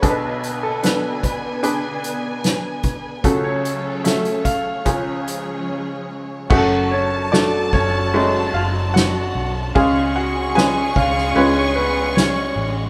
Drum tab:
CC |----------------|----------------|x---------------|----------------|
RD |----------------|----------------|--x-x-x-x-x-x-x-|x-x-x-x-x-x-x-x-|
HH |x-x-x-x-x-x-x-x-|x-x-xxx-x-x-----|----------------|----------------|
SD |----o-------o---|----o-----------|----o-------o---|----o--o----o---|
BD |o-----o-------o-|o-----o-o-------|o-----o---------|o-----o---------|